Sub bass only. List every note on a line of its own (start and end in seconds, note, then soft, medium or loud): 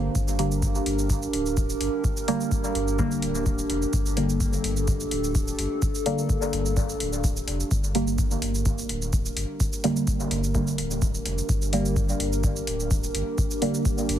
0.15 0.80 G1 medium
0.86 1.27 G1 loud
1.33 1.74 D1 loud
1.81 1.89 G1 medium
2.75 3.16 G1 medium
3.22 3.63 D1 medium
3.70 3.85 F1 loud
3.93 4.58 G1 loud
4.64 5.05 G1 loud
5.11 5.52 D1 loud
5.59 5.67 G1 medium
6.53 6.94 G1 medium
7.00 7.41 D1 medium
7.48 7.63 F1 loud
7.71 8.36 G1 loud
8.42 8.83 G1 loud
8.89 9.30 D1 loud
9.37 9.44 G1 medium
10.31 10.72 G1 loud
10.78 11.19 D1 medium
11.26 11.41 F1 loud
11.49 12.14 G1 loud
12.20 12.61 G1 loud
12.67 13.08 D1 loud
13.14 13.22 G1 medium
14.09 14.19 G1 loud